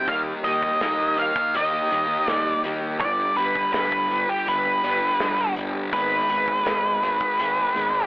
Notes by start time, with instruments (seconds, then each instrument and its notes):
0.07 fingered electric bass D#2, clean electric guitar D#3 G3 A#3 D#4 G4, lead electric guitar F5, kick, closed hi-hat
0.44 fingered electric bass D#2, distorted electric guitar D#3 A#3 D#4, lead electric guitar D#5, closed hi-hat
0.63 kick
0.81 fingered electric bass D#2, clean electric guitar D#3 G3 A#3 D#4 G4, snare, closed hi-hat
1.17 distorted electric guitar D#3, clean electric guitar G3 A#3 D#4 G4, lead electric guitar F5, closed hi-hat
1.36 muted clean electric guitar stroke, kick
1.54 fingered electric bass D#2, distorted electric guitar D#3 A#3 D#4, lead electric guitar D#5, closed hi-hat
1.72 clean electric guitar A#3 D#4 G4
1.90 fingered electric bass D#2, distorted electric guitar D#3, clean electric guitar G3 A#3 D#4 G4, closed hi-hat
2.09 muted clean electric guitar stroke
2.26 fingered electric bass D#2, clean electric guitar D#3 G3 A#3 D#4 G4, lead electric guitar D5, snare, closed hi-hat
2.63 fingered electric bass D#2, distorted electric guitar D#3, clean electric guitar G3 A#3 D#4 G4, closed hi-hat
2.81 clean electric guitar A#3 D#4 G4
2.99 fingered electric bass G1, clean electric guitar G2 D3 G3 B3 D4 G4, lead electric guitar D5, kick, closed hi-hat
3.37 fingered electric bass G1, distorted electric guitar G2 D3 G3, lead electric guitar B4, closed hi-hat
3.55 kick
3.72 fingered electric bass G1, clean electric guitar G2 D3 G3 B3 D4 G4, lead electric guitar B4, snare, closed hi-hat
3.92 kick
4.09 distorted electric guitar G2 D3, clean electric guitar G3 B3 D4 G4, closed hi-hat
4.28 lead electric guitar G4, muted clean electric guitar stroke
4.47 fingered electric bass G1, distorted electric guitar G2 D3 G3, lead electric guitar B4, closed hi-hat
4.64 clean electric guitar G3 B3 D4 G4
4.83 fingered electric bass G1, distorted electric guitar G2 D3, clean electric guitar G3 B3 D4 G4, closed hi-hat
5.19 fingered electric bass G1, clean electric guitar G2 D3 G3 B3 D4 G4, snare, closed hi-hat
5.56 fingered electric bass G1, distorted electric guitar G2 D3, clean electric guitar G3 B3 D4 G4, closed hi-hat
5.74 clean electric guitar G3 B3 D4 G4
5.92 fingered electric bass G#1, clean electric guitar G#2 D#3 G#3 B3 D#4 G#4, lead electric guitar B4, kick, closed hi-hat
6.30 fingered electric bass G#1, distorted electric guitar G#2 D#3 G#3, closed hi-hat
6.48 kick
6.65 fingered electric bass G#1, clean electric guitar G#2 D#3 G#3 B3 D#4 G#4, snare, closed hi-hat
7.02 distorted electric guitar G#2 D#3, clean electric guitar G#3 B3 D#4 G#4, closed hi-hat
7.21 muted clean electric guitar stroke, kick
7.38 fingered electric bass G#1, distorted electric guitar G#2 D#3 G#3, closed hi-hat
7.57 clean electric guitar G#3 B3 D#4 G#4
7.74 fingered electric bass G#1, distorted electric guitar G#2 D#3, clean electric guitar G#3 B3 D#4 G#4, closed hi-hat